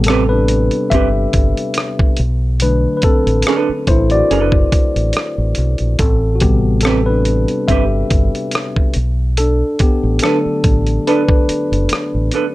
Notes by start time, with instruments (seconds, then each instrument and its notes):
Already playing: fingered electric bass A1, tine electric piano C3 G3 B3 C4 G4 A4
0.04 tine electric piano A4, closed hi-hat
0.08 hollow-body jazz guitar C4 G4 B4, tine electric piano C4, cross-stick
0.29 tine electric piano D4 B4
0.48 closed hi-hat
0.71 closed hi-hat
0.90 fingered electric bass G1, hollow-body jazz guitar C4, tine electric piano G4 E5, kick, closed hi-hat
0.95 hollow-body jazz guitar G4 B4
1.33 fingered electric bass G1, kick, closed hi-hat
1.57 closed hi-hat
1.74 cross-stick, closed hi-hat
1.99 kick
2.17 fingered electric bass B1, closed hi-hat
2.60 tine electric piano D3 F#3 A3 D4 B4, closed hi-hat
2.97 tine electric piano B4
3.02 tine electric piano C4 A4, muted fingered electric bass stroke, kick, closed hi-hat
3.27 fingered electric bass A1, closed hi-hat
3.42 closed hi-hat
3.47 hollow-body jazz guitar D4 A4 B4, cross-stick
3.69 muted fingered electric bass stroke
3.87 fingered electric bass A1, tine electric piano E4 C5, kick, closed hi-hat
4.10 tine electric piano F#4 D5, closed hi-hat
4.31 fingered electric bass F#1, hollow-body jazz guitar D4 A4 B4, closed hi-hat
4.52 kick
4.72 muted fingered electric bass stroke, kick, closed hi-hat
4.96 fingered electric bass A1, closed hi-hat
5.13 cross-stick, closed hi-hat
5.38 fingered electric bass A1
5.55 fingered electric bass B1, closed hi-hat
5.78 fingered electric bass A#1, closed hi-hat
5.99 fingered electric bass A1, tine electric piano C4 A4, kick, closed hi-hat
6.35 tine electric piano F#4
6.40 tine electric piano C3 G3 B3 G4, kick, closed hi-hat
6.81 tine electric piano A4, closed hi-hat
6.85 hollow-body jazz guitar C4 G4 B4, tine electric piano C4, cross-stick
7.06 tine electric piano D4 B4
7.25 closed hi-hat
7.48 closed hi-hat
7.68 fingered electric bass G1, hollow-body jazz guitar C4 G4 B4, tine electric piano G4 E5, kick, closed hi-hat
8.10 fingered electric bass G1, kick, closed hi-hat
8.35 closed hi-hat
8.51 cross-stick, closed hi-hat
8.76 kick
8.94 fingered electric bass B1, closed hi-hat
9.37 tine electric piano D4 A4, closed hi-hat
9.79 tine electric piano B3 G4, muted fingered electric bass stroke, kick, closed hi-hat
10.03 fingered electric bass A1
10.19 hollow-body jazz guitar D4, tine electric piano A4, closed hi-hat
10.24 tine electric piano D3 F#3 A3 D4, hollow-body jazz guitar A4 B4, cross-stick
10.46 muted fingered electric bass stroke
10.64 fingered electric bass A1, kick, closed hi-hat
10.87 closed hi-hat
11.07 hollow-body jazz guitar D4 A4 B4, tine electric piano D4 B4, closed hi-hat
11.29 kick
11.49 muted fingered electric bass stroke, closed hi-hat
11.72 fingered electric bass F#1, closed hi-hat
11.89 muted fingered electric bass stroke, cross-stick, closed hi-hat
12.14 fingered electric bass A1
12.31 hollow-body jazz guitar D4 A4, closed hi-hat
12.36 hollow-body jazz guitar B4